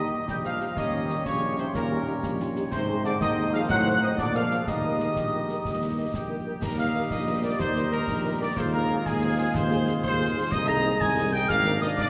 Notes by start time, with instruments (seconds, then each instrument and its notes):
Already playing: tuba D#2, euphonium D#3, trombone section G3 D#4, woodwind section G4 D#5, trumpet section D#5, piccolo D#6
0.12 french horn section A#3 D#4 G4
0.27 tuba A#1, euphonium G3, woodwind section G4 D#5, trumpet section G5, piccolo G6, concert bass drum, snare
0.44 euphonium F3, french horn section A#3 D#4 G4, trumpet section F5, piccolo F6, snare
0.60 french horn section A#3 D#4 G4, snare
0.76 tuba D#2, euphonium D#3, trombone section G3 C#4, woodwind section G4 C#5, trumpet section D#5, piccolo D#6, concert bass drum, snare
0.93 french horn section C#4 D#4 G4
1.09 french horn section C#4 D#4 G4, snare
1.25 tuba A#1, euphonium C#3, woodwind section G4 C#5, trumpet section C#5, piccolo C#6, concert bass drum, snare
1.42 french horn section C#4 D#4 G4
1.57 euphonium C3, french horn section C#4 D#4 G4, trumpet section C5, piccolo C6, snare
1.74 tuba D#2, euphonium A#2, woodwind section G4 C#5, trumpet section A#4, piccolo A#5, concert bass drum, snare
1.91 french horn section C#4 D#4 G4
2.07 french horn section C#4 D#4 G4
2.23 tuba A#1, concert bass drum, snare
2.39 french horn section C#4 D#4 G4, woodwind section F4, snare
2.56 french horn section C#4 D#4 G4, snare
2.71 tuba G#2, euphonium C3, trombone section D#3 C4, woodwind section D#4 C5, trumpet section C5, piccolo C6, concert bass drum, snare, crash
2.89 french horn section C4 D#4 G#4
3.04 euphonium D3, french horn section C4 D#4 G#4, trumpet section D5, piccolo D6, snare
3.19 tuba D#2, euphonium D#3, woodwind section D#4 C5, trumpet section D#5, piccolo D#6, concert bass drum, snare
3.37 french horn section C4 D#4 G#4
3.53 euphonium F3, french horn section C4 D#4 G#4, trumpet section F5, piccolo F6, snare
3.69 tuba A2, euphonium F#3, woodwind section D#4 C5, trumpet section F#5, piccolo F#6, concert bass drum, snare
3.86 french horn section A3 D#4 C5
4.01 euphonium D#3, french horn section A3 D#4 C5, trumpet section D#5, piccolo D#6
4.17 tuba A#2, euphonium D3, trombone section G#3 D4, woodwind section G#4 D5, trumpet section D5, piccolo D6, concert bass drum, snare
4.34 euphonium F3, french horn section G#3 D4 A#4, trumpet section F5, piccolo F6, snare
4.51 french horn section G#3 D4 A#4, snare
4.67 tuba D#2, euphonium D#3, trombone section D#4, woodwind section G4 D#5, trumpet section D#5, piccolo D#6, concert bass drum, snare
4.84 french horn section G3 D#4 A#4
5.00 french horn section G3 D#4 A#4, snare
5.16 tuba A#1, concert bass drum, snare
5.34 french horn section G3 D#4 A#4
5.49 french horn section G3 D#4 A#4, snare
5.65 tuba D#2, trombone section G3, concert bass drum, snare
5.82 french horn section G3 D#4 A#4
5.98 french horn section G3 D#4 A#4
6.13 tuba A#1, trumpet section G4, piccolo G5, concert bass drum, snare
6.30 french horn section G3 D#4 A#4
6.47 french horn section G3 D#4 A#4
6.61 tuba D#2, trombone section G3 D#4, woodwind section G4 D#5, trumpet section A#4, piccolo A#5, concert bass drum, snare, crash
6.78 french horn section G3 D#4 A#4, trumpet section F5, piccolo F6
6.95 french horn section G3 D#4 A#4
7.11 tuba A#1, trumpet section D#5, piccolo D#6, concert bass drum, snare
7.27 french horn section G3 D#4 A#4
7.43 french horn section G3 D#4 A#4, trumpet section D5, piccolo D6
7.59 tuba D#2, trumpet section C5, piccolo C6, concert bass drum, snare
7.75 french horn section G3 D#4 A#4, snare
7.91 french horn section G3 D#4 A#4, trumpet section A#4, piccolo A#5, snare
8.08 tuba A#1, concert bass drum, snare
8.25 french horn section G3 D#4 A#4
8.40 french horn section G3 D#4 A#4, trumpet section D5, piccolo D6
8.56 tuba D#2, trombone section G#3 F4, woodwind section G#4 F5, trumpet section C5, piccolo C6, concert bass drum, snare
8.72 french horn section C4 F4 G#4, trumpet section A#4, piccolo A#5
8.89 french horn section C4 F4 G#4
9.05 tuba D#2, trumpet section G#4, piccolo G#5, concert bass drum, snare
9.22 french horn section C4 F4 G#4
9.38 french horn section C4 F4 G#4
9.54 tuba D#2, trumpet section C5, piccolo C6, concert bass drum, snare
9.70 french horn section C4 F4 G#4, snare
9.87 french horn section C4 F4 G#4, snare
10.02 tuba D#2, trumpet section C5, piccolo C6, concert bass drum, snare
10.19 french horn section C4 F4 G#4
10.35 french horn section C4 F4 G#4
10.51 tuba C2, trombone section G#3 D#4, woodwind section G#4 D#5, trumpet section D#5, piccolo D#6, concert bass drum, snare, crash
10.67 french horn section C4 D#4 G#4, trumpet section A#5, piccolo A#6
10.85 french horn section C4 D#4 G#4
11.00 tuba C2, trumpet section G#5, piccolo G#6, concert bass drum, snare
11.18 french horn section C4 D#4 G#4
11.32 french horn section C4 D#4 G#4, trumpet section G5, piccolo G6
11.48 tuba G#1, trombone section A#3 D4, woodwind section A#4 D5, trumpet section F5, piccolo F6, concert bass drum, snare
11.65 french horn section A#3 D4 A#4, snare
11.81 french horn section A#3 D4 A#4, trumpet section D#5, piccolo D#6, snare
11.97 tuba G#1, trumpet section D5, piccolo D6, concert bass drum, snare